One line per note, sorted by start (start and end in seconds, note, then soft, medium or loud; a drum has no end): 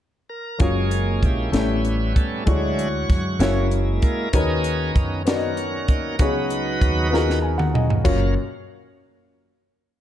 0.29 0.62 A#4 medium
0.59 1.19 F#1 medium
0.59 1.51 G#3 soft
0.59 1.26 A#3 medium
0.59 1.51 A#3 soft
0.59 1.26 C#4 medium
0.59 1.26 F4 medium
0.59 1.27 F#4 medium
0.59 1.25 G#4 medium
0.59 1.27 C#5 medium
0.59 kick loud
0.59 closed hi-hat medium
0.63 1.24 C#4 medium
0.91 closed hi-hat soft
1.23 1.51 A#1 medium
1.23 1.55 C#4 soft
1.23 2.13 E4 soft
1.23 1.82 G4 medium
1.23 kick medium
1.23 closed hi-hat soft
1.52 2.12 A1 medium
1.52 2.43 A2 soft
1.52 2.44 G3 soft
1.52 2.19 A3 medium
1.52 2.44 B3 soft
1.52 2.19 C#4 soft
1.52 2.44 C#4 soft
1.52 2.20 E4 soft
1.52 2.20 G4 soft
1.52 2.21 C#5 medium
1.52 snare medium
1.52 closed hi-hat medium
1.85 closed hi-hat soft
2.16 2.48 A4 medium
2.16 kick medium
2.16 closed hi-hat soft
2.46 3.05 D2 medium
2.46 3.36 D3 medium
2.46 2.88 F#3 soft
2.46 3.12 G#3 medium
2.46 2.88 G#3 soft
2.46 3.13 D4 medium
2.46 2.88 D4 soft
2.46 3.13 E4 medium
2.46 2.89 E4 medium
2.46 3.67 F#4 medium
2.46 3.13 F#4 medium
2.46 3.67 C#5 medium
2.46 3.14 C#5 medium
2.46 kick medium
2.46 closed hi-hat medium
2.79 closed hi-hat soft
3.10 3.38 F#2 medium
3.10 kick medium
3.10 snare soft
3.10 closed hi-hat soft
3.39 3.98 F#1 medium
3.39 4.29 G#3 soft
3.39 4.05 A#3 medium
3.39 4.29 A#3 soft
3.39 4.06 C#4 medium
3.39 4.06 E4 medium
3.39 4.29 E4 soft
3.39 4.06 F#4 medium
3.39 4.07 C#5 medium
3.39 snare medium
3.39 closed hi-hat medium
3.71 closed hi-hat soft
4.02 4.32 A#4 medium
4.02 kick medium
4.02 closed hi-hat soft
4.33 4.91 D#2 medium
4.33 5.23 D#3 soft
4.33 4.99 B3 medium
4.33 5.23 B3 medium
4.33 5.23 C#4 medium
4.33 4.99 D#4 medium
4.33 5.23 D#4 soft
4.33 4.99 F#4 medium
4.33 4.92 G#4 medium
4.33 5.22 A#4 soft
4.33 5.00 A#4 medium
4.33 5.00 C#5 medium
4.33 kick loud
4.33 closed hi-hat medium
4.64 closed hi-hat soft
4.96 6.19 F#2 medium
4.96 kick medium
4.96 closed hi-hat soft
5.25 5.91 B3 medium
5.25 5.87 C#4 medium
5.25 5.92 D#4 soft
5.25 6.16 F#4 medium
5.25 5.92 F#4 medium
5.25 6.22 A#4 medium
5.25 5.93 A#4 medium
5.25 5.34 D5 soft
5.25 snare medium
5.25 closed hi-hat medium
5.35 5.96 D#5 medium
5.57 closed hi-hat soft
5.88 6.16 A#3 soft
5.88 6.16 C#4 soft
5.88 6.17 D#4 soft
5.88 kick medium
5.88 closed hi-hat soft
6.19 6.77 C#2 medium
6.19 7.08 C#3 medium
6.19 7.08 F#3 soft
6.19 7.08 B3 soft
6.19 6.85 B3 medium
6.19 6.85 D#4 medium
6.19 7.39 D#4 medium
6.19 7.39 F#4 medium
6.19 6.85 F#4 medium
6.19 6.86 G#4 medium
6.19 7.39 B4 loud
6.19 6.86 C#5 medium
6.19 kick loud
6.19 closed hi-hat medium
6.50 closed hi-hat medium
6.81 8.01 D#2 medium
6.81 kick medium
6.81 closed hi-hat soft
7.11 7.77 B3 medium
7.11 7.77 D#4 medium
7.11 7.18 F4 soft
7.11 7.78 G#4 medium
7.11 7.79 A#4 medium
7.11 snare soft
7.18 7.81 F#4 medium
7.30 snare soft
7.42 7.57 G#5 medium
7.58 7.73 F#5 medium
7.58 mid tom medium
7.74 8.03 D#5 medium
7.74 mid tom medium
7.90 floor tom medium
8.04 8.34 F#1 medium
8.04 8.33 F#2 medium
8.04 8.34 F#3 medium
8.04 8.34 A#3 medium
8.04 8.34 C#4 medium
8.04 8.35 C#4 medium
8.04 8.34 F4 medium
8.04 8.34 F#4 medium
8.04 8.34 A#4 medium
8.04 8.34 C#5 medium
8.04 8.34 F5 medium
8.04 kick medium
8.04 crash medium